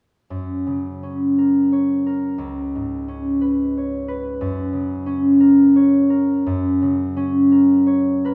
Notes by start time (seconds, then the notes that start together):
0.30 F#2
0.67 C#3
1.03 C#4
1.38 A#4
1.72 C#5
2.06 A#4
2.38 C#2
2.75 G#2
3.08 C#4
3.41 B4
3.77 C#5
4.08 B4
4.41 F#2
4.73 C#3
5.06 C#4
5.40 A#4
5.76 C#5
6.10 A#4
6.46 F#2
6.82 C#3
7.17 C#4
7.52 A#4
7.87 C#5
8.24 A#4 B4